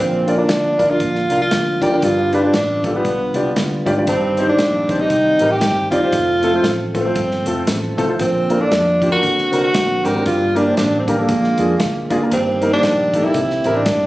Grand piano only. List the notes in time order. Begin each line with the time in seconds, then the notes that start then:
Already playing: A#2
0.27 D4 F4 A#4 D5
0.37 D4 F4 A#4 D5
0.78 D4 F4 A#4 D5
0.89 D4 F4 A#4 F5
1.30 D4 F4 A#4 F5
1.81 D4 F4 A#4 D5
1.92 D4 F4 A#4 D5
2.03 G2
2.33 D4 F4 G4 B4
2.43 D4 F4 G4 D5
2.84 D4 F4 G4 A4
2.94 D4 F4 G4 B4
3.35 D4 F4 G4 D5
3.86 D4 F4 G4 D5
3.97 D4 F4 G4 D5
4.09 G2
4.38 C4 D#4 G4 C5
4.48 C4 D#4 G4 C5
4.89 C4 D#4 G4 C5
4.99 C4 D#4 G4 C5
5.40 C4 D#4 G4 A#4
5.91 C4 D#4 G4 D5
6.03 C4 D#4 G4 C5
6.43 A3 C4 F4 A4
6.53 A3 C4 F4 C5
6.94 A3 C4 F4 A4
7.05 A3 C4 F4 C5
7.46 A3 C4 F4 A4
7.97 A3 C4 F4 A4
8.08 A3 C4 F4 C5
8.20 A#2
8.49 A#3 D4 F4 A#4
8.59 A#3 D4 F4 A4
9.01 A#3 D4 F4 G4
9.11 A#3 D4 F4 A#4
9.23 D3
9.52 C4 D4 F#4 A#4
10.04 C4 D4 F#4 A#4
10.15 C4 D4 F#4 A#4
10.26 G2
10.55 A#3 D4 G4 A#4
10.66 A#3 D4 G4 C5
11.07 A#3 D4 G4 A#4
11.18 A#3 D4 G4 A4
11.29 A#2
11.58 A#3 D4 F4 G#4
12.10 A#3 D4 F4 G#4
12.21 A#3 D4 F4 A#4
12.33 G2
12.61 A#3 D#4 G4 A#4
12.73 A#3 D#4 G4 C5
13.14 A#3 D#4 G4 A4
13.24 A#3 D#4 G4 A4
13.35 C3
13.65 C4 E4 G4 A#4